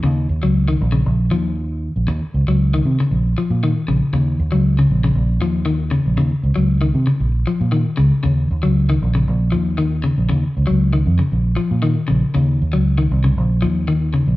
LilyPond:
<<
  \new Staff \with { instrumentName = "Clean electric guitar" } { \clef bass \time 4/4 \key ees \dorian \tempo 4 = 117 des8 r16 ges8 ees8 des8 r16 f8 r4 | r8. ges8 ees8 des8 r16 f8 ees8 des8 | des8 r16 ges8 des8 des8 r16 f8 ees8 des8 | des8 r16 ges8 ees8 des8 r16 f8 ees8 des8 |
des8 r16 ges8 ees8 des8 r16 f8 ees8 des8 | des8 r16 ges8 ees8 des8 r16 f8 ees8 des8 | des8 r16 ges8 ees8 des8 r16 f8 ees8 des8 | }
  \new Staff \with { instrumentName = "Fingered electric bass" } { \clef bass \time 4/4 \key ees \dorian ees,8 ees,16 des,8. bes,,8 bes,,8 ees,4~ ees,16 bes,,16 | ees,16 r16 des,16 des,8. c16 r16 bes,,8 r16 bes,8 r16 bes,,16 r16 | ees,8 ees,16 des,8. bes,,8 bes,,8 ees,4~ ees,16 bes,,16 | ees,16 r16 des,16 des,8. c16 r16 bes,,8 r16 bes,8 r16 des,16 r16 |
ees,8 ees,16 des,8. bes,,8 bes,,8 ees,4~ ees,16 bes,,16 | ees,16 r16 des,16 des,8. f,16 r16 bes,,8 r16 bes,8 r16 bes,,16 r16 | ees,8 ees,16 des,8. c,8 bes,,8 ees,4~ ees,16 bes,,16 | }
>>